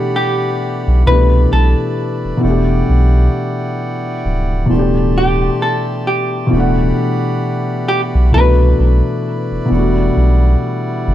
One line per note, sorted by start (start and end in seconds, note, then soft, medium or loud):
0.00 1.00 B2 medium
0.00 1.02 E3 medium
0.00 1.04 A3 medium
0.00 1.05 D4 medium
0.00 1.03 G4 medium
0.00 1.07 G4 medium
0.00 0.16 A4 medium
0.00 1.02 D5 medium
0.00 1.04 F#5 medium
0.00 2.39 B5 medium
0.16 1.07 G4 medium
0.88 1.04 B1 medium
1.06 1.46 C2 loud
1.06 2.36 B2 medium
1.06 2.39 E3 medium
1.06 2.42 A3 medium
1.06 4.66 E4 medium
1.06 2.41 B4 medium
1.06 1.52 B4 loud
1.06 2.41 D5 medium
1.11 2.45 D4 medium
1.11 2.46 G4 medium
1.53 1.75 B1 loud
1.53 4.21 A4 loud
2.25 2.32 E1 medium
2.37 4.63 B2 medium
2.37 4.65 E3 medium
2.43 2.83 E1 loud
2.43 4.66 A3 medium
2.43 8.30 D5 medium
2.43 4.68 F#5 medium
2.43 4.68 G5 medium
2.47 4.68 D4 medium
2.47 4.70 G4 medium
2.90 3.29 B1 loud
4.25 4.65 C#1 loud
4.66 6.45 B2 medium
4.66 6.48 E3 medium
4.66 6.50 A5 medium
4.70 5.50 D1 medium
4.70 6.49 A3 medium
4.70 6.50 G4 medium
4.70 6.50 C6 medium
4.76 6.51 D4 medium
4.76 6.53 G4 medium
5.18 5.62 G4 medium
5.62 6.04 A4 medium
6.07 7.85 G4 medium
6.47 8.27 B2 medium
6.47 8.29 E3 medium
6.52 6.92 D1 loud
6.52 8.31 A3 medium
6.52 8.32 G4 medium
6.52 8.32 F#5 medium
6.52 8.32 B5 medium
6.57 8.32 D4 medium
6.57 8.34 F#5 medium
7.88 8.01 G4 loud
8.15 8.32 B1 medium
8.31 8.74 C2 medium
8.31 9.64 B2 medium
8.31 9.67 E3 medium
8.31 9.70 A3 medium
8.31 11.15 E4 medium
8.31 10.12 B4 loud
8.31 9.69 B4 medium
8.31 11.15 D5 medium
8.31 9.69 B5 medium
8.36 9.71 D4 medium
8.36 9.72 F#4 medium
8.80 9.02 B1 medium
9.51 9.59 E1 soft
9.65 11.15 B2 medium
9.65 11.15 E3 medium
9.71 10.10 E1 loud
9.71 11.15 G3 medium
9.71 11.15 A3 medium
9.71 11.15 F#5 medium
9.75 11.15 D4 soft
9.75 11.15 F#4 medium
10.17 10.56 B1 medium
11.08 11.15 G1 loud